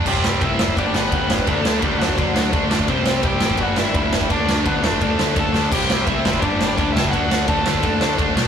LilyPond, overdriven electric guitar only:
\new Staff \with { instrumentName = "Overdriven electric guitar" } { \time 4/4 \key d \mixolydian \tempo 4 = 170 <g g'>4 <e' e''>4 <d' d''>8 <b b'>4. | <a a'>4 <g g'>8 <fis fis'>4. r4 | <c' c''>4 <g' g''>4 <fis' fis''>8 <e' e''>4. | <d' d''>4 <b b'>8 <a a'>4. <a' a''>4 |
<g' g''>4 <e' e''>4 <d' d''>8. <d' d''>8. <e' e''>8 | <fis' fis''>4 <a' a''>2~ <a' a''>8 r8 | }